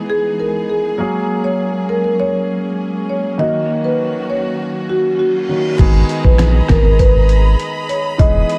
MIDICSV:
0, 0, Header, 1, 8, 480
1, 0, Start_track
1, 0, Key_signature, 5, "minor"
1, 0, Tempo, 600000
1, 794, Time_signature, 4, 2, 24, 8
1, 6868, End_track
2, 0, Start_track
2, 0, Title_t, "Marimba"
2, 0, Program_c, 0, 12
2, 77, Note_on_c, 0, 68, 87
2, 179, Note_off_c, 0, 68, 0
2, 316, Note_on_c, 0, 70, 76
2, 418, Note_off_c, 0, 70, 0
2, 557, Note_on_c, 0, 68, 65
2, 659, Note_off_c, 0, 68, 0
2, 1154, Note_on_c, 0, 73, 79
2, 1257, Note_off_c, 0, 73, 0
2, 1513, Note_on_c, 0, 70, 81
2, 1617, Note_off_c, 0, 70, 0
2, 1634, Note_on_c, 0, 70, 74
2, 1737, Note_off_c, 0, 70, 0
2, 1757, Note_on_c, 0, 73, 104
2, 2094, Note_off_c, 0, 73, 0
2, 2476, Note_on_c, 0, 73, 70
2, 2578, Note_off_c, 0, 73, 0
2, 2715, Note_on_c, 0, 75, 106
2, 2818, Note_off_c, 0, 75, 0
2, 3075, Note_on_c, 0, 71, 78
2, 3178, Note_off_c, 0, 71, 0
2, 3437, Note_on_c, 0, 73, 75
2, 3539, Note_off_c, 0, 73, 0
2, 3916, Note_on_c, 0, 66, 84
2, 4018, Note_off_c, 0, 66, 0
2, 4155, Note_on_c, 0, 66, 77
2, 4258, Note_off_c, 0, 66, 0
2, 4394, Note_on_c, 0, 66, 66
2, 4497, Note_off_c, 0, 66, 0
2, 4993, Note_on_c, 0, 71, 82
2, 5096, Note_off_c, 0, 71, 0
2, 5356, Note_on_c, 0, 70, 86
2, 5458, Note_off_c, 0, 70, 0
2, 5475, Note_on_c, 0, 70, 78
2, 5578, Note_off_c, 0, 70, 0
2, 5595, Note_on_c, 0, 71, 109
2, 5933, Note_off_c, 0, 71, 0
2, 6313, Note_on_c, 0, 73, 77
2, 6416, Note_off_c, 0, 73, 0
2, 6554, Note_on_c, 0, 75, 116
2, 6657, Note_off_c, 0, 75, 0
2, 6868, End_track
3, 0, Start_track
3, 0, Title_t, "String section"
3, 0, Program_c, 1, 48
3, 0, Note_on_c, 1, 52, 75
3, 0, Note_on_c, 1, 56, 67
3, 0, Note_on_c, 1, 59, 69
3, 0, Note_on_c, 1, 63, 70
3, 0, Note_on_c, 1, 68, 83
3, 762, Note_off_c, 1, 63, 0
3, 774, Note_off_c, 1, 59, 0
3, 775, Note_off_c, 1, 52, 0
3, 793, Note_on_c, 1, 54, 75
3, 794, Note_on_c, 1, 58, 69
3, 794, Note_on_c, 1, 61, 69
3, 2682, Note_off_c, 1, 56, 0
3, 2682, Note_off_c, 1, 68, 0
3, 2714, Note_on_c, 1, 51, 74
3, 2714, Note_on_c, 1, 66, 82
3, 4602, Note_off_c, 1, 54, 0
3, 4602, Note_off_c, 1, 58, 0
3, 4602, Note_off_c, 1, 61, 0
3, 4615, Note_off_c, 1, 51, 0
3, 4615, Note_off_c, 1, 66, 0
3, 4632, Note_on_c, 1, 83, 88
3, 4633, Note_on_c, 1, 68, 77
3, 4633, Note_on_c, 1, 75, 75
3, 4633, Note_on_c, 1, 82, 73
3, 6534, Note_off_c, 1, 68, 0
3, 6534, Note_off_c, 1, 75, 0
3, 6534, Note_off_c, 1, 82, 0
3, 6554, Note_on_c, 1, 68, 83
3, 6555, Note_on_c, 1, 75, 72
3, 6555, Note_on_c, 1, 87, 87
3, 6868, Note_off_c, 1, 68, 0
3, 6868, Note_off_c, 1, 75, 0
3, 6868, Note_off_c, 1, 83, 0
3, 6868, Note_off_c, 1, 87, 0
3, 6868, End_track
4, 0, Start_track
4, 0, Title_t, "Grand piano"
4, 0, Program_c, 2, 0
4, 0, Control_c, 2, 64, 127
4, 0, Note_on_c, 2, 52, 64
4, 0, Note_on_c, 2, 59, 58
4, 0, Note_on_c, 2, 63, 58
4, 0, Note_on_c, 2, 68, 70
4, 756, Note_off_c, 2, 52, 0
4, 760, Note_off_c, 2, 59, 0
4, 763, Note_off_c, 2, 63, 0
4, 767, Note_off_c, 2, 68, 0
4, 782, Note_on_c, 2, 54, 75
4, 790, Note_on_c, 2, 58, 72
4, 796, Note_on_c, 2, 61, 70
4, 803, Note_on_c, 2, 68, 87
4, 804, Control_c, 2, 64, 0
4, 922, Control_c, 2, 64, 127
4, 2676, Note_off_c, 2, 54, 0
4, 2680, Note_off_c, 2, 58, 0
4, 2683, Note_off_c, 2, 61, 0
4, 2687, Note_off_c, 2, 68, 0
4, 2702, Note_on_c, 2, 51, 63
4, 2709, Note_on_c, 2, 58, 58
4, 2716, Note_on_c, 2, 61, 59
4, 2723, Note_on_c, 2, 66, 69
4, 2726, Control_c, 2, 64, 0
4, 2877, Control_c, 2, 64, 127
4, 4356, Note_off_c, 2, 51, 0
4, 4360, Note_off_c, 2, 58, 0
4, 4363, Note_off_c, 2, 61, 0
4, 4366, Note_off_c, 2, 66, 0
4, 4389, Note_on_c, 2, 51, 49
4, 4392, Note_on_c, 2, 58, 44
4, 4396, Note_on_c, 2, 61, 46
4, 4399, Note_on_c, 2, 66, 55
4, 4612, Note_off_c, 2, 51, 0
4, 4624, Note_on_c, 2, 51, 80
4, 4628, Note_on_c, 2, 56, 71
4, 4633, Note_off_c, 2, 58, 0
4, 4635, Note_off_c, 2, 61, 0
4, 4636, Note_off_c, 2, 66, 0
4, 4639, Note_on_c, 2, 59, 74
4, 4643, Control_c, 2, 64, 0
4, 4644, Note_on_c, 2, 68, 88
4, 4778, Control_c, 2, 64, 127
4, 6517, Note_off_c, 2, 51, 0
4, 6519, Note_off_c, 2, 56, 0
4, 6524, Note_off_c, 2, 59, 0
4, 6527, Note_off_c, 2, 68, 0
4, 6545, Note_on_c, 2, 52, 65
4, 6551, Note_on_c, 2, 56, 63
4, 6555, Note_on_c, 2, 59, 64
4, 6561, Note_on_c, 2, 63, 63
4, 6564, Control_c, 2, 64, 0
4, 6565, Note_on_c, 2, 68, 75
4, 6706, Control_c, 2, 64, 127
4, 6868, Note_off_c, 2, 52, 0
4, 6868, Note_off_c, 2, 56, 0
4, 6868, Note_off_c, 2, 59, 0
4, 6868, Note_off_c, 2, 63, 0
4, 6868, Note_off_c, 2, 68, 0
4, 6868, End_track
5, 0, Start_track
5, 0, Title_t, "Sub bass"
5, 0, Program_c, 3, 38
5, 4634, Note_on_c, 3, 32, 109
5, 4831, Note_off_c, 3, 32, 0
5, 4996, Note_on_c, 3, 34, 92
5, 5290, Note_off_c, 3, 34, 0
5, 5356, Note_on_c, 3, 32, 108
5, 6043, Note_off_c, 3, 32, 0
5, 6554, Note_on_c, 3, 28, 100
5, 6751, Note_off_c, 3, 28, 0
5, 6868, End_track
6, 0, Start_track
6, 0, Title_t, "Downlifter"
6, 0, Program_c, 4, 103
6, 0, Note_on_c, 4, 60, 80
6, 794, Note_off_c, 4, 60, 0
6, 6868, End_track
7, 0, Start_track
7, 0, Title_t, "Reverse cymbal"
7, 0, Program_c, 5, 119
7, 3674, Note_on_c, 5, 60, 80
7, 4634, Note_off_c, 5, 60, 0
7, 6868, End_track
8, 0, Start_track
8, 0, Title_t, "Drums"
8, 4634, Note_on_c, 9, 36, 125
8, 4634, Note_on_c, 9, 42, 78
8, 4634, Note_on_c, 9, 49, 109
8, 4714, Note_off_c, 9, 36, 0
8, 4714, Note_off_c, 9, 42, 0
8, 4714, Note_off_c, 9, 49, 0
8, 4875, Note_on_c, 9, 42, 62
8, 4955, Note_off_c, 9, 42, 0
8, 4996, Note_on_c, 9, 36, 91
8, 5076, Note_off_c, 9, 36, 0
8, 5107, Note_on_c, 9, 37, 94
8, 5114, Note_on_c, 9, 38, 116
8, 5114, Note_on_c, 9, 42, 83
8, 5187, Note_off_c, 9, 37, 0
8, 5194, Note_off_c, 9, 38, 0
8, 5194, Note_off_c, 9, 42, 0
8, 5348, Note_on_c, 9, 37, 93
8, 5354, Note_on_c, 9, 38, 119
8, 5354, Note_on_c, 9, 42, 58
8, 5356, Note_on_c, 9, 36, 100
8, 5428, Note_off_c, 9, 37, 0
8, 5434, Note_off_c, 9, 38, 0
8, 5434, Note_off_c, 9, 42, 0
8, 5436, Note_off_c, 9, 36, 0
8, 5594, Note_on_c, 9, 42, 86
8, 5595, Note_on_c, 9, 36, 87
8, 5674, Note_off_c, 9, 42, 0
8, 5675, Note_off_c, 9, 36, 0
8, 5833, Note_on_c, 9, 42, 57
8, 5913, Note_off_c, 9, 42, 0
8, 6076, Note_on_c, 9, 42, 67
8, 6156, Note_off_c, 9, 42, 0
8, 6315, Note_on_c, 9, 42, 49
8, 6395, Note_off_c, 9, 42, 0
8, 6555, Note_on_c, 9, 36, 127
8, 6556, Note_on_c, 9, 42, 84
8, 6635, Note_off_c, 9, 36, 0
8, 6636, Note_off_c, 9, 42, 0
8, 6796, Note_on_c, 9, 42, 64
8, 6868, Note_off_c, 9, 42, 0
8, 6868, End_track
0, 0, End_of_file